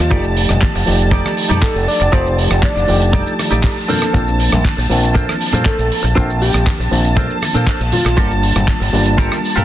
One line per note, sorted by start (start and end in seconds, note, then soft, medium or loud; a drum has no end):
0.00 0.17 F4 loud
0.00 4.13 A5 medium
0.00 shaker medium
0.11 0.46 F1 loud
0.11 0.84 F3 loud
0.11 0.84 A3 medium
0.11 0.24 D#4 loud
0.11 0.84 D#4 medium
0.11 0.24 G4 loud
0.11 0.85 G4 loud
0.11 0.24 A4 loud
0.11 0.84 D5 medium
0.11 0.25 D5 loud
0.11 kick loud
0.11 closed hi-hat medium
0.11 cabasa soft
0.11 shaker medium
0.24 shaker soft
0.36 muted clean electric guitar stroke soft
0.36 open hi-hat loud
0.36 cabasa medium
0.49 0.60 F1 medium
0.49 cross-stick medium
0.49 closed hi-hat medium
0.49 low conga medium
0.49 cabasa soft
0.49 shaker medium
0.62 kick loud
0.62 clap loud
0.62 closed hi-hat medium
0.62 high conga medium
0.62 cabasa soft
0.62 shaker medium
0.74 0.85 F1 loud
0.74 muted clean electric guitar stroke soft
0.74 open hi-hat medium
0.74 shaker soft
0.86 1.21 F1 medium
0.86 2.10 F3 loud
0.86 2.10 A3 medium
0.86 2.10 D#4 medium
0.86 2.11 G4 loud
0.86 2.10 D5 medium
0.86 open hi-hat loud
0.86 high conga medium
0.86 cabasa medium
0.99 closed hi-hat medium
0.99 cabasa medium
0.99 shaker medium
1.11 1.31 D#4 medium
1.11 1.31 G4 medium
1.11 1.32 A4 medium
1.11 1.32 D5 medium
1.11 kick loud
1.11 closed hi-hat medium
1.11 cabasa soft
1.11 shaker medium
1.24 cross-stick medium
1.24 high conga medium
1.24 shaker soft
1.37 open hi-hat loud
1.37 cabasa medium
1.49 1.60 F2 medium
1.49 1.75 D#4 medium
1.49 1.75 G4 medium
1.49 1.76 A4 medium
1.49 1.76 D5 loud
1.49 closed hi-hat medium
1.49 low conga medium
1.49 cabasa medium
1.49 shaker medium
1.62 1.84 A4 loud
1.62 kick loud
1.62 clap loud
1.62 closed hi-hat medium
1.62 shaker medium
1.75 1.86 F1 loud
1.75 shaker soft
1.88 2.10 D5 loud
1.88 open hi-hat loud
1.88 cabasa medium
2.00 2.11 F1 loud
2.00 muted clean electric guitar stroke medium
2.00 closed hi-hat medium
2.00 cabasa medium
2.00 shaker medium
2.12 2.47 F1 loud
2.12 2.85 F3 loud
2.12 2.85 A3 medium
2.12 2.25 D#4 loud
2.12 2.86 D#4 medium
2.12 2.26 G4 loud
2.12 2.86 G4 loud
2.12 2.26 A4 loud
2.12 2.35 C5 loud
2.12 2.86 D5 medium
2.12 2.26 D5 loud
2.12 kick loud
2.12 closed hi-hat medium
2.12 cabasa soft
2.12 shaker medium
2.27 shaker soft
2.37 muted clean electric guitar stroke soft
2.37 open hi-hat loud
2.37 cabasa medium
2.50 2.61 F1 medium
2.50 cross-stick medium
2.50 closed hi-hat medium
2.50 shaker medium
2.62 3.34 D5 loud
2.62 kick loud
2.62 clap loud
2.62 closed hi-hat medium
2.62 high conga medium
2.62 cabasa soft
2.62 shaker medium
2.76 2.86 F1 loud
2.76 muted clean electric guitar stroke soft
2.76 shaker soft
2.88 3.23 F1 medium
2.88 3.87 F3 loud
2.88 3.87 A3 medium
2.88 3.87 D#4 medium
2.88 3.87 G4 loud
2.88 3.87 D5 medium
2.88 open hi-hat loud
2.88 high conga medium
2.88 cabasa medium
3.01 closed hi-hat medium
3.01 cabasa medium
3.01 shaker medium
3.13 3.32 D#4 medium
3.13 3.33 G4 medium
3.13 3.33 A4 medium
3.13 3.33 D5 medium
3.13 kick loud
3.13 closed hi-hat medium
3.13 low conga medium
3.13 cabasa soft
3.13 shaker medium
3.27 shaker soft
3.38 cross-stick medium
3.38 open hi-hat loud
3.38 high conga medium
3.38 cabasa medium
3.51 3.62 A1 loud
3.51 3.76 D#4 medium
3.51 3.77 G4 medium
3.51 3.77 A4 medium
3.51 3.77 D5 loud
3.51 closed hi-hat medium
3.51 cabasa soft
3.51 shaker medium
3.63 kick loud
3.63 clap loud
3.63 open hi-hat medium
3.63 shaker medium
3.77 shaker soft
3.88 4.11 F3 medium
3.88 4.11 A#3 medium
3.88 4.12 C4 medium
3.88 4.29 D4 medium
3.88 4.12 D4 medium
3.88 4.30 A4 medium
3.88 4.12 A4 medium
3.88 4.30 A#4 medium
3.88 4.30 C5 loud
3.88 open hi-hat loud
3.88 high conga medium
3.88 low conga medium
3.88 cabasa medium
4.02 cross-stick medium
4.02 closed hi-hat medium
4.02 cabasa medium
4.02 shaker medium
4.14 4.49 A#1 loud
4.14 4.87 F3 loud
4.14 4.87 A#3 medium
4.14 4.87 C4 medium
4.14 4.87 D4 medium
4.14 9.64 A5 medium
4.14 4.88 A5 loud
4.14 kick loud
4.14 closed hi-hat medium
4.14 cabasa soft
4.14 shaker medium
4.28 shaker soft
4.39 muted clean electric guitar stroke soft
4.39 open hi-hat loud
4.39 cabasa medium
4.52 4.63 A#1 medium
4.52 cross-stick medium
4.52 closed hi-hat medium
4.52 low conga medium
4.52 cabasa medium
4.52 shaker medium
4.65 kick loud
4.65 clap loud
4.65 closed hi-hat medium
4.65 high conga medium
4.65 cabasa soft
4.65 shaker medium
4.77 4.88 A#1 loud
4.77 muted clean electric guitar stroke soft
4.77 open hi-hat medium
4.77 shaker medium
4.89 5.25 A#1 medium
4.89 6.13 F3 loud
4.89 6.13 A#3 medium
4.89 6.13 C4 medium
4.89 6.14 D4 medium
4.89 6.14 A5 loud
4.89 open hi-hat loud
4.89 high conga medium
4.89 cabasa medium
5.03 closed hi-hat medium
5.03 cabasa medium
5.03 shaker medium
5.14 5.34 D4 medium
5.14 5.34 A4 medium
5.14 5.35 A#4 medium
5.14 5.35 C5 medium
5.14 kick loud
5.14 closed hi-hat medium
5.14 cabasa soft
5.14 shaker medium
5.29 cross-stick medium
5.29 high conga medium
5.29 shaker medium
5.41 open hi-hat loud
5.41 cabasa medium
5.52 5.63 A#2 medium
5.52 5.78 D4 medium
5.52 5.79 A4 medium
5.52 5.79 A#4 medium
5.52 5.79 C5 loud
5.52 closed hi-hat medium
5.52 low conga medium
5.52 cabasa soft
5.52 shaker medium
5.65 5.88 A4 medium
5.65 kick loud
5.65 clap loud
5.65 closed hi-hat medium
5.65 shaker medium
5.78 5.89 A#1 loud
5.78 shaker medium
5.91 open hi-hat loud
5.91 cabasa medium
6.03 6.14 A#1 medium
6.03 muted clean electric guitar stroke medium
6.03 closed hi-hat medium
6.03 cabasa medium
6.03 shaker medium
6.15 6.51 A#1 loud
6.15 6.88 F3 loud
6.15 6.89 A#3 medium
6.15 6.89 C4 medium
6.15 6.29 D4 loud
6.15 6.89 D4 medium
6.15 6.29 A4 loud
6.15 6.29 A#4 loud
6.15 6.30 C5 loud
6.15 6.89 A5 loud
6.15 kick loud
6.15 closed hi-hat medium
6.15 cabasa soft
6.15 shaker medium
6.30 shaker medium
6.41 6.63 G4 medium
6.41 muted clean electric guitar stroke soft
6.41 open hi-hat loud
6.41 cabasa medium
6.54 6.64 A#1 medium
6.54 cross-stick medium
6.54 closed hi-hat medium
6.54 cabasa medium
6.54 shaker medium
6.67 kick loud
6.67 clap loud
6.67 closed hi-hat medium
6.67 high conga medium
6.67 cabasa soft
6.67 shaker medium
6.79 6.89 A#1 medium
6.79 muted clean electric guitar stroke soft
6.79 shaker medium
6.91 7.26 A#1 medium
6.91 8.15 F3 medium
6.91 8.15 A#3 medium
6.91 8.15 C4 medium
6.91 8.15 D4 medium
6.91 8.16 A5 loud
6.91 open hi-hat loud
6.91 high conga medium
6.91 cabasa loud
7.04 closed hi-hat medium
7.04 cabasa medium
7.04 shaker medium
7.16 7.36 D4 medium
7.16 7.36 A4 medium
7.16 7.36 A#4 medium
7.16 7.37 C5 medium
7.16 kick loud
7.16 closed hi-hat medium
7.16 low conga medium
7.16 cabasa soft
7.16 shaker medium
7.30 shaker medium
7.42 cross-stick medium
7.42 open hi-hat loud
7.42 high conga medium
7.42 cabasa medium
7.54 7.65 A#2 medium
7.54 7.80 D4 medium
7.54 7.80 A4 medium
7.54 7.81 A#4 medium
7.54 7.81 C5 loud
7.54 closed hi-hat medium
7.54 cabasa medium
7.54 shaker medium
7.67 kick loud
7.67 clap loud
7.67 closed hi-hat medium
7.67 cabasa soft
7.67 shaker medium
7.80 7.90 A#1 loud
7.80 shaker medium
7.92 8.23 F4 loud
7.92 open hi-hat loud
7.92 high conga medium
7.92 low conga medium
7.92 cabasa medium
8.05 8.16 A#1 loud
8.05 muted clean electric guitar stroke medium
8.05 cross-stick medium
8.05 closed hi-hat medium
8.05 cabasa soft
8.05 shaker medium
8.17 8.52 G1 loud
8.17 8.90 G3 loud
8.17 8.90 A#3 medium
8.17 8.91 D4 medium
8.17 8.30 F4 loud
8.17 8.91 F4 medium
8.17 8.31 G4 loud
8.17 8.31 A4 loud
8.17 8.31 A#4 loud
8.17 8.91 A5 loud
8.17 kick loud
8.17 closed hi-hat medium
8.17 cabasa soft
8.17 shaker medium
8.31 shaker medium
8.42 muted clean electric guitar stroke soft
8.42 open hi-hat loud
8.42 cabasa loud
8.56 8.66 G1 medium
8.56 cross-stick medium
8.56 closed hi-hat medium
8.56 low conga medium
8.56 cabasa medium
8.56 shaker medium
8.68 kick loud
8.68 clap loud
8.68 closed hi-hat medium
8.68 high conga medium
8.68 shaker medium
8.80 8.91 G1 loud
8.80 muted clean electric guitar stroke soft
8.80 open hi-hat medium
8.80 shaker soft
8.93 9.28 G1 medium
8.93 9.64 G3 medium
8.93 9.64 A#3 medium
8.93 9.64 D4 medium
8.93 9.64 F4 medium
8.93 9.64 A5 loud
8.93 open hi-hat loud
8.93 high conga medium
8.93 cabasa loud
9.06 closed hi-hat medium
9.06 cabasa medium
9.06 shaker medium
9.18 9.37 F4 medium
9.18 9.38 G4 medium
9.18 9.38 A4 medium
9.18 9.38 A#4 medium
9.18 kick loud
9.18 closed hi-hat medium
9.18 cabasa soft
9.18 shaker medium
9.32 cross-stick medium
9.32 high conga medium
9.32 shaker soft
9.44 open hi-hat medium
9.44 cabasa loud
9.56 9.64 G2 medium
9.56 9.64 F4 medium
9.56 9.64 G4 medium
9.56 9.64 A4 medium
9.56 9.64 A#4 medium
9.56 closed hi-hat medium
9.56 low conga medium
9.56 cabasa medium
9.56 shaker medium